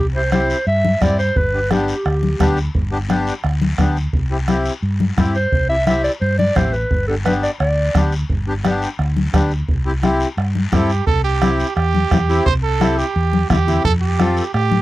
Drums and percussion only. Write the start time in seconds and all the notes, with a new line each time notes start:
0.32 bombo rim, high conga, short guiro
0.50 short guiro
0.67 long guiro
0.85 high conga
1.01 bombo low, bombo rim, high conga, short guiro
1.19 short guiro
1.36 bombo low, long guiro
1.71 bombo rim, high conga, short guiro
1.88 short guiro
2.05 bombo rim, long guiro
2.23 high conga
2.40 bombo low, bombo rim, high conga, short guiro
2.57 short guiro
2.75 bombo low, long guiro
3.09 bombo rim, high conga, short guiro
3.27 short guiro
3.44 bombo rim, long guiro
3.62 high conga
3.78 bombo low, bombo rim, high conga, short guiro
3.97 short guiro
4.13 bombo low, long guiro
4.48 bombo rim, high conga, short guiro
4.66 short guiro
4.83 long guiro
5.00 high conga
5.18 bombo low, bombo rim, high conga, short guiro
5.35 short guiro
5.52 bombo low, long guiro
5.87 bombo rim, high conga, short guiro
6.04 short guiro
6.22 long guiro
6.39 high conga
6.56 bombo low, bombo rim, high conga, short guiro
6.73 short guiro
6.91 bombo low, long guiro
7.26 bombo rim, high conga, short guiro
7.43 short guiro
7.60 bombo rim, long guiro
7.95 bombo low, bombo rim, high conga, short guiro
8.12 short guiro
8.30 bombo low, long guiro
8.64 bombo rim, high conga, short guiro
8.82 short guiro
8.99 bombo rim, long guiro
9.17 high conga
9.34 bombo low, bombo rim, high conga, short guiro
9.51 short guiro
9.69 bombo low, long guiro
10.03 bombo rim, high conga, short guiro
10.20 short guiro
10.38 bombo rim, long guiro
10.55 high conga
10.72 bombo low, bombo rim, high conga, short guiro
10.90 short guiro
11.07 bombo low, long guiro
11.42 bombo rim, high conga, short guiro
11.60 short guiro
11.77 bombo rim, long guiro
11.94 high conga
12.11 bombo low, bombo rim, high conga, short guiro
12.29 short guiro
12.46 bombo low, long guiro
12.81 bombo rim, high conga, short guiro
12.99 short guiro
13.16 long guiro
13.33 high conga
13.50 bombo low, bombo rim, high conga, low conga, short guiro
13.68 low conga, short guiro
13.85 bombo low, long guiro
14.19 bombo rim, high conga, short guiro
14.37 short guiro
14.54 bombo rim, long guiro
14.71 high conga